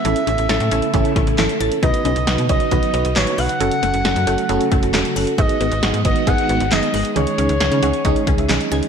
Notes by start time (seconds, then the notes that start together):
Already playing: B3 E5
0.05 A1 C#3 E3 A3 C#4 E4 A4, closed hi-hat
0.16 closed hi-hat
0.27 A1 C#4 E4 A4, closed hi-hat
0.38 A1, closed hi-hat
0.49 A1 C#4 E4 A4, snare, closed hi-hat
0.60 A2, closed hi-hat
0.71 A1 C#4 E4 A4, closed hi-hat
0.82 closed hi-hat
0.94 A1 E3 C#4 E4 A4, kick, closed hi-hat
1.05 closed hi-hat
1.16 A1 C#4 E4 A4, kick, closed hi-hat
1.27 A1, closed hi-hat
1.38 G#1 E3 C#4 E4 A4, snare, clap, closed hi-hat
1.49 closed hi-hat
1.60 A1 C#4 E4 A4 A6, closed hi-hat
1.72 closed hi-hat
1.83 B1 C#3 D#3 F#3 D#4 F#4 B4 D#5, kick, closed hi-hat
1.94 closed hi-hat
2.05 B1 C#4 D#4 F#4 B4, closed hi-hat
2.16 B1, closed hi-hat
2.27 B1 D#4 F#4 B4, snare, closed hi-hat
2.38 B2, closed hi-hat
2.49 B1 C#4 D#4 F#4 B4 D#5, kick, closed hi-hat
2.60 closed hi-hat
2.71 B1 D#3 D#4 F#4 B4, kick, closed hi-hat
2.83 closed hi-hat
2.94 B1 C#4 D#4 F#4 B4, closed hi-hat
3.05 B1, closed hi-hat
3.16 A1 D#3 D#4 F#4 B4 C#5, snare, clap, closed hi-hat
3.27 closed hi-hat
3.38 B1 D#4 F#4 B4 F#5 F#6, open hi-hat
3.49 closed hi-hat
3.60 F#1 C#3 F#3 A3 C#4 F#4 A4, closed hi-hat
3.71 closed hi-hat
3.83 F#1 A3 C#4 F#4 A4, closed hi-hat
3.94 F#1, closed hi-hat
4.05 F#1 C#4 F#4 A4, snare, closed hi-hat
4.16 F#2, closed hi-hat
4.27 F#1 A3 C#4 F#4 A4, closed hi-hat
4.38 closed hi-hat
4.49 F#1 C#3 C#4 F#4 A4, closed hi-hat
4.61 closed hi-hat
4.71 F#1 A3 C#4 F#4 A4, kick, closed hi-hat
4.83 F#1, closed hi-hat
4.94 E1 C#3 C#4 F#4 A4, snare, clap, closed hi-hat
5.05 closed hi-hat
5.16 F#1 C#4 F#4 A4 F#6, open hi-hat
5.27 closed hi-hat
5.38 G#1 D#3 G#3 B3 D#4 G#4 D#5, kick, closed hi-hat
5.49 closed hi-hat
5.60 G#1 B3 D#4 G#4, closed hi-hat
5.72 G#1, closed hi-hat
5.83 G#1 B3 D#4 F#4 G#4, snare, closed hi-hat
5.94 G#2, closed hi-hat
6.05 G#1 B3 D#4 F#4 D#5, kick, closed hi-hat
6.16 closed hi-hat
6.27 G#1 D#3 B3 D#4 G#4 F#5, kick, closed hi-hat
6.38 closed hi-hat
6.49 G#1 B3 D#4 F#4, closed hi-hat
6.60 G#1, closed hi-hat
6.71 F#1 D#3 B3 D#4 G#4 D#5, snare, clap, closed hi-hat
6.83 closed hi-hat
6.94 G#1 B3 D#4 G#4 F#6, open hi-hat
7.05 closed hi-hat
7.16 C#2 D#3 C#4 D#4 G#4 C#5, closed hi-hat
7.27 closed hi-hat
7.38 C#2 C#4 D#4 G#4, closed hi-hat
7.49 C#2, closed hi-hat
7.60 C#2 C#4 D#4 G#4, snare, closed hi-hat
7.72 C#3, closed hi-hat
7.83 C#2 C#4 D#4 G#4 F#5, closed hi-hat
7.94 closed hi-hat
8.05 C#2 D#3 C#4 D#4 G#4 G#5, kick, closed hi-hat
8.16 closed hi-hat
8.27 C#2 C#4 D#4 G#4, kick, closed hi-hat
8.38 C#2 E5, closed hi-hat
8.49 B1 D#3 C#4 D#4 G#4 D#5, snare, clap, closed hi-hat
8.61 closed hi-hat
8.72 C#2 C#4 D#4 G#4 G#6, closed hi-hat
8.83 closed hi-hat